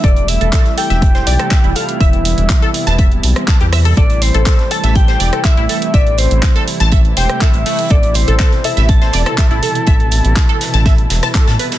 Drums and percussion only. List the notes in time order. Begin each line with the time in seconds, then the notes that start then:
0.04 kick, closed hi-hat
0.16 closed hi-hat
0.28 closed hi-hat, open hi-hat
0.41 closed hi-hat
0.53 kick, snare, clap, closed hi-hat
0.66 snare, closed hi-hat
0.78 closed hi-hat, open hi-hat
0.90 snare, closed hi-hat
1.02 kick, closed hi-hat
1.15 snare, closed hi-hat
1.27 snare, closed hi-hat, open hi-hat
1.39 cross-stick, closed hi-hat
1.51 kick, snare, clap, closed hi-hat
1.64 closed hi-hat
1.76 closed hi-hat, open hi-hat
1.89 closed hi-hat
2.00 kick, closed hi-hat
2.13 closed hi-hat
2.25 closed hi-hat, open hi-hat
2.38 closed hi-hat
2.49 kick, snare, clap, closed hi-hat
2.62 closed hi-hat
2.74 closed hi-hat, open hi-hat
2.87 snare, closed hi-hat
2.98 kick, closed hi-hat
3.12 closed hi-hat
3.23 closed hi-hat, open hi-hat
3.36 cross-stick, closed hi-hat
3.48 kick, snare, clap, closed hi-hat
3.60 closed hi-hat
3.73 cross-stick, open hi-hat
3.85 closed hi-hat
3.97 kick, closed hi-hat
4.10 closed hi-hat
4.22 closed hi-hat, open hi-hat
4.34 closed hi-hat
4.46 kick, snare, clap, closed hi-hat
4.59 snare, closed hi-hat
4.71 closed hi-hat, open hi-hat
4.83 snare, closed hi-hat
4.95 kick, closed hi-hat
5.08 snare, closed hi-hat
5.20 snare, closed hi-hat, open hi-hat
5.33 cross-stick, closed hi-hat
5.44 kick, snare, clap, closed hi-hat
5.57 closed hi-hat
5.69 closed hi-hat, open hi-hat
5.82 closed hi-hat
5.94 kick, closed hi-hat
6.07 closed hi-hat
6.18 closed hi-hat, open hi-hat
6.31 closed hi-hat
6.43 kick, snare, clap, closed hi-hat
6.56 closed hi-hat
6.68 closed hi-hat, open hi-hat
6.80 snare, closed hi-hat
6.92 kick, closed hi-hat
7.05 closed hi-hat
7.17 closed hi-hat, open hi-hat
7.29 cross-stick, closed hi-hat
7.41 kick, snare, clap, closed hi-hat
7.53 closed hi-hat
7.66 open hi-hat
7.79 closed hi-hat
7.90 kick, closed hi-hat
8.03 closed hi-hat
8.14 closed hi-hat, open hi-hat
8.28 closed hi-hat
8.39 kick, snare, clap, closed hi-hat
8.51 snare, closed hi-hat
8.64 closed hi-hat, open hi-hat
8.77 snare, closed hi-hat
8.89 kick, closed hi-hat
9.02 snare, closed hi-hat
9.13 snare, closed hi-hat, open hi-hat
9.26 cross-stick, closed hi-hat
9.38 kick, snare, clap, closed hi-hat
9.51 closed hi-hat
9.63 closed hi-hat, open hi-hat
9.75 closed hi-hat
9.87 kick, closed hi-hat
10.00 closed hi-hat
10.11 closed hi-hat, open hi-hat
10.25 closed hi-hat
10.36 kick, snare, clap, closed hi-hat
10.49 closed hi-hat
10.61 snare, closed hi-hat, open hi-hat
10.74 snare, closed hi-hat
10.86 kick, snare, closed hi-hat
10.98 closed hi-hat
11.10 snare, closed hi-hat, open hi-hat
11.23 cross-stick, snare, closed hi-hat
11.35 kick, snare, clap, closed hi-hat
11.48 snare, closed hi-hat
11.59 closed hi-hat, open hi-hat
11.72 snare, closed hi-hat